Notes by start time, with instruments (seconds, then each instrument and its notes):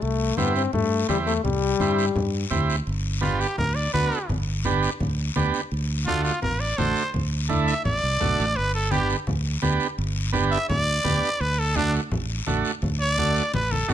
0.02 fingered electric bass C2, trombone A3, high conga, long guiro
0.37 fingered electric bass G2, trombone B3, transistor combo organ C4 E4 G4, high conga, short guiro
0.56 trombone C4, short guiro
0.73 fingered electric bass G2, trombone A3, high conga, low conga, long guiro
1.08 fingered electric bass E2, trombone G3, transistor combo organ C4 E4 G4, high conga, short guiro
1.26 trombone A3, short guiro
1.44 fingered electric bass C2, trombone G3, high conga, low conga, long guiro
1.79 fingered electric bass G2, transistor combo organ C4 E4 G4, high conga, short guiro
1.99 short guiro
2.15 fingered electric bass G2, high conga, low conga, long guiro
2.51 fingered electric bass D2, transistor combo organ C4 E4 G4, high conga, low conga, short guiro
2.70 short guiro
2.87 fingered electric bass G1, high conga, long guiro
3.21 transistor combo organ B3 D4 G4, trumpet F4, high conga, short guiro
3.40 trumpet G4, short guiro
3.58 fingered electric bass D2, trumpet A#4, high conga, low conga, long guiro
3.75 trumpet D5
3.93 fingered electric bass D2, transistor combo organ B3 D4 F#4, trumpet B4, high conga, short guiro
4.12 short guiro
4.29 fingered electric bass G1, high conga, low conga, long guiro
4.65 transistor combo organ B3 D4 G4, high conga, short guiro
4.83 short guiro
5.00 fingered electric bass D2, high conga, low conga, long guiro
5.36 fingered electric bass D2, transistor combo organ B3 D4 G4, high conga, short guiro
5.54 short guiro
5.71 fingered electric bass D2, high conga, long guiro
6.06 transistor combo organ A3 D4 F#4, trumpet F4, high conga, short guiro
6.24 trumpet F4, short guiro
6.42 fingered electric bass A1, trumpet A#4, high conga, low conga, long guiro
6.60 trumpet D5
6.78 fingered electric bass A1, transistor combo organ A3 D4 F#4, trumpet C5, high conga, short guiro
6.96 short guiro
7.14 fingered electric bass D2, high conga, low conga, long guiro
7.49 transistor combo organ A3 D4 E4, high conga, short guiro
7.67 trumpet E5, short guiro
7.85 fingered electric bass A1, trumpet D5, high conga, low conga, long guiro
8.03 fingered electric bass C2
8.20 fingered electric bass B1, transistor combo organ A3 D4 F#4, high conga, low conga, short guiro
8.39 fingered electric bass A1, short guiro
8.56 fingered electric bass G1, trumpet B4, high conga, long guiro
8.75 trumpet A4
8.91 transistor combo organ B3 D4 G4, trumpet G4, high conga, short guiro
9.10 short guiro
9.27 fingered electric bass D2, high conga, low conga, long guiro
9.62 fingered electric bass D2, transistor combo organ B3 D4 G4, high conga, short guiro
9.80 short guiro
9.98 fingered electric bass G1, high conga, long guiro
10.32 transistor combo organ B3 D4 G4, high conga, short guiro
10.51 trumpet E5, short guiro
10.69 fingered electric bass D2, trumpet D5, high conga, low conga, long guiro
11.04 fingered electric bass D2, transistor combo organ B3 D4 G4, high conga, low conga, short guiro
11.23 short guiro
11.40 fingered electric bass D2, trumpet B4, high conga, long guiro
11.59 trumpet A4
11.76 transistor combo organ A3 D4 F#4, trumpet D4, high conga, short guiro
11.94 short guiro
12.11 fingered electric bass A1, high conga, low conga, long guiro
12.47 fingered electric bass A1, transistor combo organ A3 D4 F#4, high conga, short guiro
12.65 short guiro
12.82 fingered electric bass D2, high conga, low conga, long guiro
13.00 trumpet D5
13.18 transistor combo organ A3 D4 F#4, high conga, short guiro
13.36 short guiro
13.54 fingered electric bass A1, trumpet B4, high conga, long guiro
13.71 trumpet A4, high conga
13.88 fingered electric bass A1, transistor combo organ A3 D4 F#4, trumpet F#4, low conga, short guiro